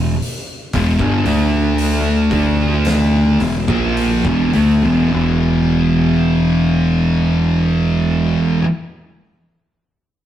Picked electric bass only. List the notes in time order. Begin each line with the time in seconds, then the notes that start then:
Already playing: E1
0.74 E1
1.00 G1
1.25 D2
2.31 D2
3.39 E1
3.68 A#1
4.25 E1
4.56 D2
4.84 E1
5.13 E1